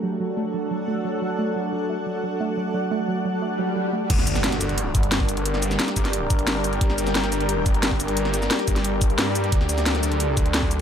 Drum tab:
CC |----------------|----------------|----------------|x---------------|
HH |----------------|----------------|----------------|x-x-xxxxx-xxx-xx|
SH |----------------|----------------|----------------|--xx--x---x---x-|
SD |----------------|----------------|----------------|-o-ooo------o---|
BD |----------------|----------------|----------------|o---------o--o--|

CC |----------------|----------------|----------------|----------------|
HH |x-x-xxxxx-xxx-xx|x-x-xxxxx-xxx-xx|x-x-xxxxx-xxx-xx|x-x-xxxxx-xxx-x-|
SH |--xx--x---x---x-|--xx--x---x---x-|--xx--x---x---x-|--xx--x---x---x-|
SD |-o-ooo-o----o---|-o-ooo------o---|-o-ooo-o----o---|-o-ooo------o---|
BD |------o---o-----|o---------o--o--|------o---o-----|o---------o--o--|